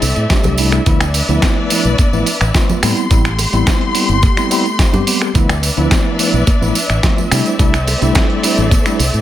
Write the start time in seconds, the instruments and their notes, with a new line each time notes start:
Already playing: string section C4 A4 D5 E5
0.02 fingered electric bass C2, open hi-hat, tambourine
0.16 fingered electric bass A2, closed hi-hat, tambourine
0.30 tine electric piano G3 A3 D4 G4, kick, snare, closed hi-hat, tambourine
0.44 fingered electric bass C2, closed hi-hat, tambourine, high bongo, low conga
0.58 tine electric piano G3 A3 D4 E4, open hi-hat, tambourine
0.72 finger snap, tambourine, high bongo
0.86 fingered electric bass D2, tine electric piano F3 A3 B3 E4, string section D4 B4 D5, kick, closed hi-hat, tambourine
1.01 finger snap, closed hi-hat, tambourine
1.14 open hi-hat, tambourine
1.28 fingered electric bass D2, tine electric piano F3 A3 B3 E4, closed hi-hat, tambourine
1.42 kick, snare, closed hi-hat, tambourine
1.70 tine electric piano F3 A3 B3 E4, open hi-hat, tambourine
1.85 fingered electric bass B1, closed hi-hat, tambourine
1.98 kick, closed hi-hat, tambourine, high conga
2.13 fingered electric bass A1, tine electric piano F3 A3 B3 E4, tambourine
2.26 open hi-hat, tambourine
2.41 fingered electric bass A1, finger snap, closed hi-hat, tambourine
2.54 tine electric piano F3 A3 B3 F4, kick, snare, closed hi-hat, tambourine
2.69 tambourine, low conga
2.82 fingered electric bass A2, tine electric piano G3 B3 C4 E4, string section A3 G4 C6, finger snap, open hi-hat, tambourine
2.97 closed hi-hat, tambourine
3.10 fingered electric bass A1, tine electric piano G3 B3 C4 E4, kick, closed hi-hat, tambourine
3.25 finger snap, closed hi-hat, tambourine
3.39 open hi-hat, tambourine, high bongo
3.53 fingered electric bass A1, tine electric piano G3 B3 C4 E4, closed hi-hat, tambourine
3.67 kick, snare, closed hi-hat, tambourine
3.81 closed hi-hat
3.94 tine electric piano G3 B3 C4 E4, open hi-hat, tambourine
4.09 fingered electric bass G1, closed hi-hat, tambourine
4.22 kick, closed hi-hat, tambourine, high conga
4.37 tine electric piano G3 B3 C4 E4, finger snap, closed hi-hat, tambourine
4.50 tine electric piano G3 B3 C4 E4, open hi-hat, tambourine
4.65 closed hi-hat, tambourine
4.79 kick, snare, closed hi-hat, tambourine
4.93 fingered electric bass G2, tine electric piano G3 B3 C4 G4, closed hi-hat, tambourine, high bongo, low conga
5.07 tine electric piano G3 B3 C4 G4, open hi-hat, tambourine
5.22 finger snap, tambourine, high bongo
5.34 fingered electric bass D2, tine electric piano F3 A3 B3 E4, string section D4 B4 D5 E5, kick, closed hi-hat, tambourine
5.49 finger snap, closed hi-hat, tambourine
5.63 open hi-hat, tambourine
5.77 fingered electric bass D2, tine electric piano F3 A3 B3 E4, closed hi-hat, tambourine
5.91 kick, snare, closed hi-hat, tambourine
6.18 tine electric piano F3 A3 B3 E4, open hi-hat, tambourine
6.33 fingered electric bass B1, closed hi-hat, tambourine
6.47 kick, closed hi-hat, tambourine, high conga
6.61 fingered electric bass A1, tine electric piano F3 A3 B3 E4, tambourine
6.75 open hi-hat, tambourine
6.90 fingered electric bass A1, finger snap, closed hi-hat, tambourine
7.03 tine electric piano F3 A3 B3 F4, kick, snare, closed hi-hat, tambourine
7.18 tambourine, low conga
7.31 fingered electric bass C3, tine electric piano G3 A3 D4 E4, string section C4 A4 D5, finger snap, open hi-hat, tambourine
7.46 closed hi-hat, tambourine
7.59 fingered electric bass C2, tine electric piano G3 A3 D4 E4, kick, closed hi-hat, tambourine
7.74 finger snap, closed hi-hat, tambourine
7.87 open hi-hat, tambourine, high bongo
8.01 fingered electric bass C2, tine electric piano G3 A3 D4 E4, closed hi-hat, tambourine
8.15 kick, snare, closed hi-hat, tambourine
8.30 closed hi-hat
8.43 tine electric piano G3 A3 D4 E4, open hi-hat, tambourine
8.58 fingered electric bass A1, closed hi-hat, tambourine
8.71 kick, closed hi-hat, tambourine, high conga
8.85 tine electric piano G3 A3 D4 E4, finger snap, closed hi-hat, tambourine
9.00 fingered electric bass C2, open hi-hat, tambourine
9.14 fingered electric bass A2, closed hi-hat, tambourine